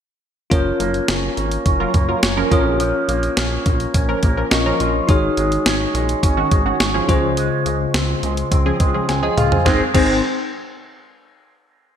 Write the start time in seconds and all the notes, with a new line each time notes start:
0.50 F#1 F3 C#4 F4 A#4 C#5, kick, closed hi-hat
0.80 F#1 A#3, closed hi-hat
0.94 closed hi-hat
1.08 F#1 C#4, snare, closed hi-hat
1.37 G#1 A#3, closed hi-hat
1.51 closed hi-hat
1.66 F#1 C#4, kick, closed hi-hat
1.80 F#3 F4 A#4
1.94 F#1 A#3, kick, closed hi-hat
2.09 F#3 F4 A#4
2.23 F#1 C#4, snare, closed hi-hat
2.37 F3 C#4 A#4
2.50 A#1 F3 C#4 F4 A#4 C#5, kick, closed hi-hat
2.80 F3, closed hi-hat
3.08 A#1 A#3, closed hi-hat
3.23 closed hi-hat
3.37 A#1 C#4, snare, closed hi-hat
3.66 A#1 A#3, kick, closed hi-hat
3.80 closed hi-hat
3.94 A#1 C#4, kick, closed hi-hat
4.09 F3 C#4 A#4
4.23 A#1 A#3, kick, closed hi-hat
4.37 F3 C#4 A#4
4.51 A#1 C#4 F4 A#4 D#5, snare, closed hi-hat
4.66 F3 C#4 A#4
4.80 A#1 F4, closed hi-hat
5.07 G#1 D#3 D#4 F#4 G#4 C#5, kick, closed hi-hat
5.37 G#1 G#3, closed hi-hat
5.52 closed hi-hat
5.66 G#1 C#4, snare, closed hi-hat
5.94 A#1 G#3, closed hi-hat
6.09 closed hi-hat
6.23 G#1 C#4, kick, closed hi-hat
6.37 D#3 C#4 F#4
6.51 G#1 G#3, kick, closed hi-hat
6.66 D#3 C#4 F#4
6.80 G#1 C#4, snare, closed hi-hat
6.94 F3 C#4 G#4
7.08 C#2 C#3 G#3 F4 G#4 C5, kick, closed hi-hat
7.37 G#3, closed hi-hat
7.66 C#2 G#3, closed hi-hat
7.94 C#2 C4, snare, closed hi-hat
8.23 C#2 G#3, closed hi-hat
8.37 closed hi-hat
8.51 C#2 C4, kick, closed hi-hat
8.66 F3 C#4 G#4
8.80 C#2 G#3, kick, closed hi-hat
8.94 F3 C#4 G#4
9.09 C#2 C4 G#5, snare, closed hi-hat
9.23 C#3 F3 G#4 D#5
9.37 C#2 F4 G#4 F5, closed hi-hat, mid tom
9.52 C5 G#5, floor tom
9.65 G#1 D#3 G#3 C4 D#4 G#4 C5, kick, snare
9.94 G#1 D#3 G#3 C4 D#4 G#4 C5, kick, crash